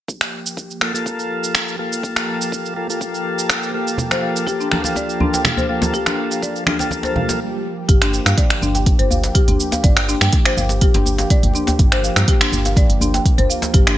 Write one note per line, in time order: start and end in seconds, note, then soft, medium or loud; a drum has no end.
0.08 7.85 F3 medium
0.08 7.85 A#3 medium
0.08 7.85 G4 medium
0.08 kick loud
0.08 shaker medium
0.21 finger snap medium
0.21 shaker soft
0.46 shaker medium
0.57 kick medium
0.57 shaker medium
0.71 shaker soft
0.81 0.92 A#3 medium
0.81 0.93 F4 medium
0.81 0.92 A4 medium
0.81 finger snap medium
0.94 1.76 A#3 medium
0.94 1.76 F4 medium
0.94 1.76 A4 medium
0.94 shaker medium
1.06 kick loud
1.06 shaker medium
1.19 shaker soft
1.44 shaker medium
1.55 finger snap medium
1.55 kick medium
1.55 shaker medium
1.68 shaker soft
1.79 2.74 A#3 medium
1.79 2.74 F4 medium
1.79 2.74 A4 medium
1.93 shaker medium
2.03 kick loud
2.03 shaker medium
2.16 finger snap loud
2.16 shaker soft
2.41 shaker medium
2.52 kick loud
2.52 shaker medium
2.66 shaker soft
2.76 2.88 A#3 medium
2.76 2.88 F4 medium
2.76 2.87 A4 medium
2.90 3.72 A#3 medium
2.90 3.72 F4 medium
2.90 3.72 A4 medium
2.90 shaker medium
3.01 kick loud
3.01 shaker medium
3.15 shaker soft
3.39 shaker medium
3.50 finger snap medium
3.50 kick loud
3.50 shaker medium
3.63 shaker soft
3.74 4.69 A#3 medium
3.74 4.69 F4 medium
3.74 4.69 A4 medium
3.87 shaker medium
3.98 kick loud
3.98 low conga medium
3.98 shaker medium
4.11 4.22 C5 medium
4.11 finger snap medium
4.11 muted conga soft
4.11 shaker soft
4.23 4.30 F5 medium
4.36 shaker medium
4.47 4.59 G4 medium
4.47 kick loud
4.47 muted conga soft
4.47 shaker medium
4.60 4.66 D4 medium
4.60 shaker soft
4.72 4.83 A#3 medium
4.72 4.83 F4 medium
4.72 4.83 A4 medium
4.72 finger snap medium
4.72 high conga loud
4.72 djembe tone medium
4.84 5.67 A#3 medium
4.84 5.67 F4 medium
4.84 5.67 A4 loud
4.84 4.96 F5 medium
4.84 djembe slap medium
4.84 muted conga soft
4.84 shaker medium
4.96 5.08 D5 medium
4.96 kick loud
4.96 djembe tone medium
4.96 shaker medium
5.09 shaker soft
5.20 5.32 D4 medium
5.20 muted conga soft
5.20 djembe tone medium
5.20 high conga medium
5.20 djembe bass medium
5.34 5.40 G5 medium
5.34 djembe slap medium
5.34 shaker medium
5.45 finger snap medium
5.45 kick loud
5.45 high conga loud
5.45 low conga loud
5.45 shaker medium
5.57 5.68 C5 loud
5.57 muted conga soft
5.57 djembe bass medium
5.57 shaker soft
5.69 6.64 A#3 medium
5.69 6.64 F4 medium
5.69 6.64 A4 medium
5.69 5.76 F5 medium
5.82 djembe slap loud
5.82 djembe tone medium
5.82 high conga medium
5.82 shaker medium
5.94 6.06 G4 loud
5.94 kick loud
5.94 shaker medium
6.06 6.13 D4 medium
6.06 finger snap loud
6.06 muted conga soft
6.06 shaker soft
6.31 6.42 F5 medium
6.31 shaker medium
6.42 6.54 D5 medium
6.42 kick loud
6.42 muted conga soft
6.42 shaker medium
6.56 shaker soft
6.67 6.78 A#3 medium
6.67 6.78 D4 medium
6.67 6.78 F4 medium
6.67 6.78 A4 medium
6.67 finger snap medium
6.67 high conga loud
6.67 djembe tone medium
6.79 7.40 A#3 medium
6.79 7.40 F4 medium
6.79 7.40 A4 loud
6.79 6.86 G5 medium
6.79 djembe slap medium
6.79 muted conga soft
6.79 shaker medium
6.91 kick loud
6.91 swell medium
6.91 djembe tone medium
6.91 high conga medium
6.91 shaker medium
7.03 7.15 C5 medium
7.03 djembe slap loud
7.03 shaker soft
7.16 7.23 F5 medium
7.16 muted conga soft
7.16 high conga medium
7.16 djembe tone medium
7.16 low conga medium
7.29 djembe slap loud
7.29 shaker medium
7.88 8.20 G1 loud
7.88 13.98 F3 medium
7.88 13.98 A#3 medium
7.88 8.01 G4 medium
7.88 13.98 G4 medium
7.88 kick loud
7.88 closed hi-hat medium
7.88 shaker soft
8.02 8.08 D4 medium
8.02 finger snap medium
8.02 closed hi-hat soft
8.14 shaker medium
8.26 8.34 G2 medium
8.26 8.37 F5 medium
8.26 finger snap medium
8.26 closed hi-hat soft
8.26 shaker medium
8.38 8.49 D5 medium
8.38 kick loud
8.38 closed hi-hat medium
8.38 shaker soft
8.50 finger snap medium
8.50 closed hi-hat soft
8.62 8.93 G1 medium
8.62 8.74 D4 medium
8.62 djembe tone medium
8.62 shaker medium
8.75 8.81 G5 medium
8.75 closed hi-hat soft
8.75 djembe slap medium
8.75 shaker soft
8.86 kick loud
8.86 closed hi-hat medium
8.86 djembe tone medium
8.86 shaker soft
8.99 9.29 G1 medium
8.99 9.10 C5 medium
8.99 closed hi-hat soft
9.11 9.18 F5 medium
9.11 djembe tone medium
9.11 djembe bass medium
9.11 shaker medium
9.23 closed hi-hat soft
9.23 djembe slap loud
9.23 shaker soft
9.35 9.47 G4 loud
9.35 kick loud
9.35 closed hi-hat medium
9.35 shaker soft
9.48 9.56 G1 medium
9.48 9.54 D4 medium
9.48 closed hi-hat soft
9.48 djembe bass medium
9.60 shaker medium
9.72 9.83 F5 medium
9.72 closed hi-hat soft
9.72 djembe slap loud
9.72 djembe tone loud
9.72 shaker medium
9.84 10.15 G1 loud
9.84 9.95 D5 loud
9.84 kick loud
9.84 closed hi-hat medium
9.84 shaker soft
9.97 finger snap medium
9.97 closed hi-hat soft
10.09 10.20 D4 medium
10.09 shaker medium
10.21 10.29 G2 medium
10.21 10.28 G5 medium
10.21 finger snap medium
10.21 closed hi-hat soft
10.21 shaker soft
10.33 kick loud
10.33 closed hi-hat medium
10.33 shaker soft
10.45 10.56 C5 loud
10.45 finger snap loud
10.45 closed hi-hat soft
10.57 10.88 G1 medium
10.57 10.64 F5 medium
10.57 djembe tone medium
10.57 shaker loud
10.69 closed hi-hat soft
10.69 djembe slap medium
10.69 shaker medium
10.81 10.94 G4 loud
10.81 kick loud
10.81 closed hi-hat medium
10.81 djembe tone medium
10.81 shaker soft
10.94 11.25 G1 medium
10.94 11.01 D4 medium
10.94 closed hi-hat soft
10.94 djembe slap loud
11.06 djembe tone medium
11.06 shaker medium
11.18 11.30 F5 medium
11.18 closed hi-hat soft
11.18 djembe slap loud
11.18 shaker medium
11.30 11.42 D5 loud
11.30 kick loud
11.30 closed hi-hat medium
11.30 shaker soft
11.43 11.51 G1 medium
11.43 closed hi-hat soft
11.43 djembe bass medium
11.54 11.66 D4 medium
11.54 djembe tone medium
11.54 shaker loud
11.67 11.74 G5 medium
11.67 closed hi-hat soft
11.67 djembe slap loud
11.67 djembe bass medium
11.67 shaker medium
11.79 12.10 G1 loud
11.79 kick loud
11.79 closed hi-hat medium
11.79 shaker soft
11.92 12.03 C5 loud
11.92 finger snap medium
11.92 closed hi-hat soft
12.04 12.11 F5 medium
12.04 shaker loud
12.16 12.24 G2 medium
12.16 finger snap medium
12.16 closed hi-hat soft
12.16 shaker medium
12.28 12.40 G4 medium
12.28 kick loud
12.28 closed hi-hat medium
12.28 shaker soft
12.41 12.47 D4 medium
12.41 finger snap loud
12.41 closed hi-hat soft
12.52 12.83 G1 medium
12.52 djembe tone medium
12.52 shaker loud
12.65 12.76 F5 medium
12.65 closed hi-hat soft
12.65 djembe slap medium
12.65 shaker medium
12.76 12.88 D5 loud
12.76 kick loud
12.76 closed hi-hat medium
12.76 djembe tone medium
12.76 shaker soft
12.90 13.20 G1 medium
12.90 closed hi-hat soft
13.01 13.13 D4 medium
13.01 djembe tone medium
13.01 djembe bass medium
13.01 shaker loud
13.14 13.20 G5 medium
13.14 closed hi-hat soft
13.14 djembe slap loud
13.14 shaker medium
13.26 kick loud
13.26 closed hi-hat medium
13.26 shaker soft
13.38 13.46 G1 medium
13.38 13.49 C5 loud
13.38 closed hi-hat soft
13.38 djembe bass medium
13.50 13.57 F5 medium
13.50 shaker medium
13.62 closed hi-hat soft
13.62 djembe slap loud
13.62 djembe tone loud
13.62 shaker medium
13.74 13.98 G1 loud
13.74 13.86 G4 loud
13.74 kick loud
13.74 closed hi-hat medium
13.74 shaker soft
13.87 13.93 D4 medium
13.87 finger snap medium
13.87 closed hi-hat soft